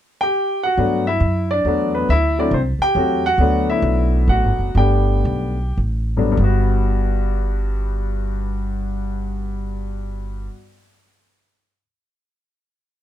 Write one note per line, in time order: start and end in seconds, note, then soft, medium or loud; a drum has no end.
0.21 0.62 G4 medium
0.21 0.61 G5 loud
0.63 1.05 F#4 medium
0.63 1.08 F#5 medium
0.77 1.20 G2 medium
0.77 1.03 F#3 medium
0.77 1.04 A3 soft
0.77 1.04 B3 soft
0.77 1.04 D4 medium
1.07 1.48 E4 medium
1.07 1.47 E5 medium
1.20 1.63 F#2 medium
1.51 1.67 D4 medium
1.51 1.91 D5 medium
1.65 2.07 E2 medium
1.65 2.09 F#3 medium
1.65 2.09 A3 medium
1.65 1.95 B3 soft
1.65 2.10 D4 medium
1.95 2.09 B3 medium
1.95 2.08 B4 medium
2.09 2.51 D2 medium
2.09 2.37 E4 medium
2.09 2.36 E5 loud
2.39 2.51 F#3 medium
2.39 2.51 A3 medium
2.39 2.52 C4 medium
2.39 2.53 D4 medium
2.39 2.52 E4 medium
2.39 2.52 D5 medium
2.51 2.78 C2 medium
2.51 2.60 C5 medium
2.56 2.62 C4 medium
2.79 3.26 G5 loud
2.79 muted upright bass stroke soft
2.83 3.23 G4 medium
2.95 3.37 E2 medium
2.95 3.21 F#3 medium
2.95 3.22 A3 medium
2.95 3.22 C4 medium
2.95 3.23 F#4 medium
3.26 3.66 F#4 medium
3.26 3.66 F#5 loud
3.38 3.81 D2 medium
3.38 4.66 F#3 medium
3.38 4.66 A3 medium
3.38 4.66 B3 medium
3.38 4.66 D4 medium
3.70 4.26 E4 medium
3.70 4.31 E5 medium
3.82 4.27 B1 medium
4.28 4.44 A1 medium
4.28 4.73 F#4 medium
4.28 4.73 F#5 medium
4.44 4.58 G1 soft
4.59 4.74 F#1 medium
4.75 5.24 G1 medium
4.75 5.53 G3 medium
4.75 5.54 A3 soft
4.75 5.54 B3 soft
4.75 5.54 D4 medium
4.75 5.77 G4 medium
4.75 5.76 G5 medium
5.25 5.77 B1 medium
5.77 6.35 A1 medium
6.17 6.30 G2 medium
6.17 6.36 F#3 medium
6.17 6.36 A3 soft
6.17 6.36 B3 medium
6.17 6.37 D4 medium
6.32 10.45 G2 medium
6.32 10.49 G3 medium
6.37 10.47 G1 medium
6.37 10.54 B3 medium
6.44 10.57 F#4 medium